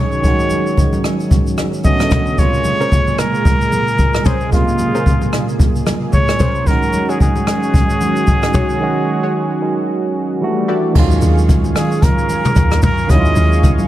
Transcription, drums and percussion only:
0.12 shaker
0.24 kick, shaker
0.39 shaker
0.50 high conga, shaker
0.67 shaker
0.77 kick, low conga, shaker
0.93 high conga, shaker
1.04 cross-stick, shaker
1.20 shaker
1.31 kick, low conga, shaker
1.47 shaker
1.58 cross-stick, high conga, shaker
1.73 shaker
1.84 kick, high conga, low conga, shaker
2.00 cross-stick, high conga, shaker
2.11 kick, cross-stick, mid tom, high conga, shaker
2.26 shaker
2.38 kick, shaker
2.54 shaker
2.64 high conga, shaker
2.81 shaker
2.92 kick, low conga, shaker
3.07 high conga, shaker
3.19 cross-stick, shaker
3.34 shaker
3.45 kick, low conga, shaker
3.61 shaker
3.72 high conga, shaker
3.88 shaker
3.98 kick, high conga, low conga, shaker
4.14 cross-stick, shaker
4.25 kick, mid tom, high conga, shaker
4.41 shaker
4.52 kick, shaker
4.68 shaker
4.78 high conga, shaker
4.95 shaker
5.06 kick, low conga, shaker
5.21 high conga, shaker
5.33 cross-stick, shaker
5.49 shaker
5.59 kick, low conga, shaker
5.76 shaker
5.87 cross-stick, high conga, shaker
6.13 kick, high conga, low conga, shaker
6.28 cross-stick, shaker
6.39 kick, mid tom, high conga, shaker
6.55 shaker
6.67 kick, shaker
6.82 shaker
6.93 high conga, shaker
7.10 shaker
7.20 kick, low conga, shaker
7.36 high conga, shaker
7.47 cross-stick, shaker
7.63 shaker
7.74 kick, low conga, shaker
7.90 shaker
8.01 high conga, shaker
8.16 shaker
8.27 kick, high conga, low conga, shaker
8.43 cross-stick, shaker
8.54 kick, mid tom, high conga, shaker
8.69 shaker
10.95 kick, crash, low conga
11.11 shaker
11.21 open hi-hat, high conga, shaker
11.38 shaker
11.49 kick, hi-hat pedal, low conga, shaker
11.64 high conga, shaker
11.76 cross-stick, open hi-hat, shaker
11.92 shaker
12.02 kick, hi-hat pedal, low conga, shaker
12.18 shaker
12.29 open hi-hat, high conga, shaker
12.45 mid tom, shaker
12.55 kick, hi-hat pedal, high conga, low conga, shaker
12.71 cross-stick, high conga, shaker
12.82 kick, mid tom, open hi-hat, high conga, shaker
12.98 shaker
13.10 kick, hi-hat pedal, low conga, shaker
13.25 shaker
13.36 open hi-hat, high conga, shaker
13.52 shaker
13.63 kick, hi-hat pedal, low conga, shaker
13.79 high conga, shaker

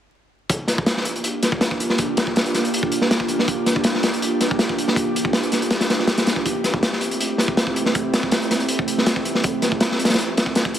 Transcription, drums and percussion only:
0.50 kick, closed hi-hat
0.67 snare, closed hi-hat
0.78 kick
0.86 snare, closed hi-hat
0.97 snare
1.05 closed hi-hat
1.16 closed hi-hat
1.24 closed hi-hat
1.43 snare, closed hi-hat
1.52 kick
1.61 snare, closed hi-hat
1.71 kick
1.80 closed hi-hat
1.90 snare
1.98 kick, closed hi-hat
2.17 snare, closed hi-hat
2.27 kick
2.36 snare, closed hi-hat
2.46 closed hi-hat
2.54 snare, closed hi-hat
2.65 closed hi-hat
2.74 closed hi-hat
2.83 kick
2.92 closed hi-hat
3.01 snare
3.11 snare, closed hi-hat
3.20 kick
3.28 closed hi-hat
3.39 snare
3.48 kick, closed hi-hat
3.66 snare, closed hi-hat
3.76 kick
3.84 snare, closed hi-hat
3.95 snare
4.03 snare, closed hi-hat
4.14 closed hi-hat
4.22 closed hi-hat
4.41 snare, closed hi-hat
4.51 kick
4.59 snare, closed hi-hat
4.69 kick
4.78 closed hi-hat
4.88 snare
4.96 kick, closed hi-hat
5.16 closed hi-hat
5.25 kick
5.33 snare, closed hi-hat
5.43 closed hi-hat
5.52 snare, closed hi-hat
5.62 closed hi-hat
5.71 snare, closed hi-hat
5.81 snare, closed hi-hat
5.90 snare, closed hi-hat
5.99 snare
6.07 snare, closed hi-hat
6.18 snare, closed hi-hat
6.27 snare, closed hi-hat
6.36 kick
6.46 kick, closed hi-hat
6.64 snare, closed hi-hat
6.74 kick
6.83 snare, closed hi-hat
6.93 snare
7.01 closed hi-hat
7.11 closed hi-hat
7.21 closed hi-hat
7.38 snare, closed hi-hat
7.48 kick
7.57 snare, closed hi-hat
7.67 kick
7.76 closed hi-hat
7.86 snare
7.95 kick, closed hi-hat
8.14 snare, closed hi-hat
8.23 kick
8.31 snare, closed hi-hat
8.42 closed hi-hat
8.51 snare, closed hi-hat
8.60 closed hi-hat
8.69 closed hi-hat
8.79 kick
8.88 closed hi-hat
8.98 snare
9.06 snare, closed hi-hat
9.16 kick
9.25 closed hi-hat
9.35 snare
9.44 kick, closed hi-hat
9.62 snare, closed hi-hat
9.72 kick
9.80 snare, closed hi-hat
9.92 snare
9.99 closed hi-hat
10.05 snare, closed hi-hat
10.10 snare, closed hi-hat
10.14 snare, closed hi-hat
10.18 closed hi-hat
10.37 snare, closed hi-hat
10.46 kick
10.55 snare, closed hi-hat
10.65 kick
10.74 closed hi-hat

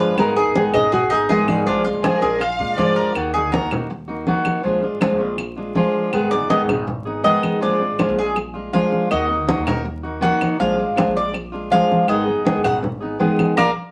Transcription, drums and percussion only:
0.18 high conga, claves
0.37 high conga
0.55 high conga
0.74 high conga, low conga, claves
0.93 high conga, low conga
1.12 high conga
1.29 high conga
1.48 high conga, claves
1.66 high conga
1.85 high conga
2.04 high conga, claves
2.23 high conga
2.41 high conga, claves
2.60 high conga
2.79 high conga
3.15 high conga, claves
3.35 high conga
3.54 high conga
3.71 high conga, low conga, claves
3.91 high conga
4.09 high conga
4.27 high conga
4.45 high conga, claves
4.64 high conga
4.83 high conga
5.01 high conga, claves
5.20 high conga
5.38 high conga, claves
5.57 high conga
5.75 high conga
6.13 high conga, claves
6.32 high conga
6.50 high conga
6.69 high conga, low conga, claves
6.88 high conga, low conga
7.06 high conga
7.25 high conga
7.43 high conga, claves
7.62 high conga
7.81 high conga
7.99 high conga, claves
8.18 high conga
8.36 high conga, claves
8.55 high conga
8.74 high conga
8.92 high conga
9.11 high conga, claves
9.30 high conga
9.49 high conga
9.67 high conga, low conga, claves
9.86 high conga
10.05 high conga
10.23 high conga
10.41 high conga, claves
10.61 high conga
10.80 high conga
10.97 high conga, claves
11.17 high conga
11.34 high conga, claves
11.54 high conga
11.73 high conga
11.92 high conga
12.08 high conga, claves
12.28 high conga
12.47 high conga
12.64 high conga, low conga, claves
12.84 high conga, low conga
13.02 high conga
13.21 high conga
13.39 high conga, claves
13.58 high conga, claves

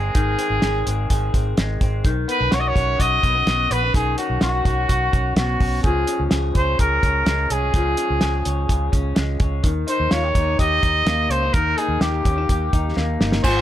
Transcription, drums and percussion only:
0.15 kick, closed hi-hat
0.39 closed hi-hat
0.62 snare, closed hi-hat
0.87 closed hi-hat
1.10 kick, closed hi-hat
1.34 kick, closed hi-hat
1.57 snare, closed hi-hat
1.81 kick, closed hi-hat
2.04 kick, closed hi-hat
2.29 closed hi-hat
2.52 snare, closed hi-hat
2.76 kick, closed hi-hat
3.00 kick, closed hi-hat
3.23 kick, closed hi-hat
3.47 snare, closed hi-hat
3.71 closed hi-hat
3.94 kick, closed hi-hat
4.18 closed hi-hat
4.41 snare, closed hi-hat
4.65 kick, closed hi-hat
4.89 kick, closed hi-hat
5.13 kick, closed hi-hat
5.36 snare, closed hi-hat
5.60 kick, open hi-hat
5.84 kick, closed hi-hat
6.07 closed hi-hat
6.31 snare, closed hi-hat
6.55 kick, closed hi-hat
6.79 kick, closed hi-hat
7.03 kick, closed hi-hat
7.26 snare, closed hi-hat
7.50 closed hi-hat
7.74 kick, closed hi-hat
7.97 closed hi-hat
8.21 snare, closed hi-hat
8.45 closed hi-hat
8.69 kick, closed hi-hat
8.93 kick, closed hi-hat
9.16 snare, closed hi-hat
9.40 kick, closed hi-hat
9.64 kick, closed hi-hat
9.88 closed hi-hat
10.11 snare, closed hi-hat
10.35 kick, closed hi-hat
10.59 kick, closed hi-hat
10.83 kick, closed hi-hat
11.06 snare, closed hi-hat
11.31 closed hi-hat
11.54 kick, closed hi-hat
11.78 closed hi-hat
12.01 snare, closed hi-hat
12.25 kick, closed hi-hat
12.49 kick, closed hi-hat
12.73 kick, closed hi-hat
12.97 snare
13.21 snare
13.32 snare
13.44 kick, crash, tambourine

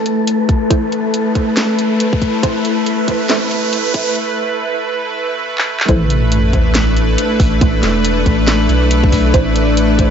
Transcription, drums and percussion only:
0.06 closed hi-hat
0.27 closed hi-hat
0.49 kick, closed hi-hat
0.70 kick, closed hi-hat
0.92 closed hi-hat
1.14 closed hi-hat
1.35 kick, closed hi-hat
1.57 snare, closed hi-hat
1.79 closed hi-hat
2.00 closed hi-hat
2.13 kick
2.22 kick, closed hi-hat
2.43 kick, closed hi-hat
2.65 closed hi-hat
2.86 closed hi-hat
3.08 kick, closed hi-hat
3.30 snare, closed hi-hat
3.51 closed hi-hat
3.73 closed hi-hat
3.94 kick, closed hi-hat
5.58 clap
5.80 clap
5.89 kick, closed hi-hat
6.10 closed hi-hat
6.32 closed hi-hat
6.53 kick, closed hi-hat
6.75 snare, closed hi-hat
6.97 closed hi-hat
7.18 closed hi-hat
7.40 kick, open hi-hat
7.61 kick, closed hi-hat
7.83 snare, closed hi-hat
8.05 closed hi-hat
8.26 kick, closed hi-hat
8.48 snare, closed hi-hat
8.69 closed hi-hat
8.91 closed hi-hat
9.04 kick
9.12 kick, open hi-hat
9.34 kick, closed hi-hat
9.56 closed hi-hat
9.77 closed hi-hat
9.99 kick, closed hi-hat

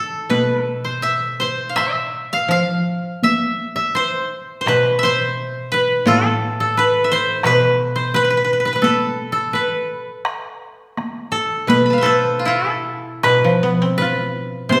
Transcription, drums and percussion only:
0.31 taiko high
1.76 taiko rim
3.23 taiko high
4.67 taiko rim
6.06 taiko high
7.44 taiko rim
8.83 taiko high
10.25 taiko rim
10.97 taiko rim, taiko high
11.69 taiko high
13.24 taiko rim
14.72 taiko high

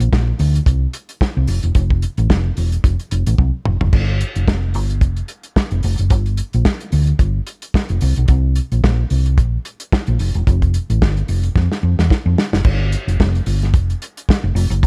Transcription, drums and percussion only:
0.00 closed hi-hat
0.13 kick, snare
0.39 open hi-hat
0.55 closed hi-hat
0.66 kick, closed hi-hat
0.93 closed hi-hat
1.09 closed hi-hat
1.21 kick, snare
1.47 open hi-hat
1.63 closed hi-hat
1.75 kick, closed hi-hat
1.90 kick
2.02 closed hi-hat
2.18 closed hi-hat
2.30 kick, snare
2.57 open hi-hat
2.72 closed hi-hat
2.84 kick, closed hi-hat
3.00 closed hi-hat
3.11 closed hi-hat
3.27 closed hi-hat
3.38 kick, high tom
3.65 mid tom
3.81 floor tom
3.93 kick, crash
4.21 closed hi-hat
4.36 closed hi-hat
4.48 kick, snare
4.74 open hi-hat
4.90 closed hi-hat
5.01 kick, closed hi-hat
5.17 closed hi-hat
5.28 closed hi-hat
5.43 closed hi-hat
5.56 kick, snare
5.71 closed hi-hat
5.83 open hi-hat
5.98 closed hi-hat
6.10 kick, closed hi-hat
6.26 closed hi-hat
6.37 closed hi-hat
6.53 closed hi-hat
6.65 kick, snare
6.80 closed hi-hat
6.92 open hi-hat
7.07 closed hi-hat
7.19 kick, closed hi-hat
7.47 closed hi-hat
7.62 closed hi-hat
7.74 kick, snare
7.89 closed hi-hat
8.01 open hi-hat
8.16 closed hi-hat
8.28 kick, closed hi-hat
8.55 closed hi-hat
8.72 closed hi-hat
8.84 kick, snare
9.10 open hi-hat
9.26 closed hi-hat
9.38 kick, closed hi-hat
9.65 closed hi-hat
9.80 closed hi-hat
9.92 kick, snare
10.07 closed hi-hat
10.19 open hi-hat
10.34 closed hi-hat
10.47 kick, closed hi-hat
10.62 kick, closed hi-hat
10.74 closed hi-hat
10.90 closed hi-hat
11.02 kick, snare
11.17 closed hi-hat
11.28 open hi-hat
11.43 closed hi-hat
11.56 kick, snare
11.72 snare
11.99 snare
12.10 kick, snare
12.38 snare
12.53 snare
12.65 kick, crash
12.92 closed hi-hat
13.08 closed hi-hat
13.20 kick, snare
13.35 closed hi-hat
13.46 open hi-hat
13.62 snare, closed hi-hat
13.74 kick, closed hi-hat
13.90 closed hi-hat
14.02 closed hi-hat
14.17 closed hi-hat
14.29 kick, snare
14.56 open hi-hat
14.71 closed hi-hat
14.83 kick, closed hi-hat

